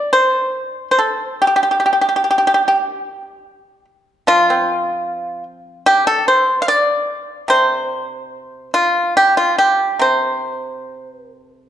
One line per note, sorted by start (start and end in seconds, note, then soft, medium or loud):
0.13 0.88 C5 medium
0.91 0.98 C5 soft
0.99 1.38 A4 medium
1.42 1.46 G4 medium
1.47 1.55 G4 soft
1.56 1.62 G4 soft
1.63 1.70 G4 soft
1.71 1.78 G4 soft
1.80 1.85 G4 soft
1.86 1.92 G4 soft
1.93 2.00 G4 soft
2.01 2.07 G4 soft
2.09 2.15 G4 soft
2.16 2.23 G4 soft
2.24 2.29 G4 soft
2.31 2.37 G4 soft
2.38 2.46 G4 soft
2.47 2.53 G4 soft
2.54 2.61 G4 soft
2.68 3.85 G4 medium
4.27 6.68 F3 soft
4.27 5.43 F4 medium
4.50 6.08 C4 soft
5.86 6.05 G4 medium
6.07 6.26 A4 medium
6.28 6.59 C5 medium
6.62 6.68 F5 medium
6.68 7.46 D5 medium
7.48 9.98 C3 soft
7.48 8.70 C5 medium
8.74 9.13 F4 medium
9.17 9.36 G4 medium
9.37 9.57 F4 medium
9.58 9.98 G4 medium
9.99 11.69 C3 soft
9.99 11.08 C5 medium
11.08 11.26 B4 medium
11.26 11.45 A#4 medium
11.45 11.69 A4 medium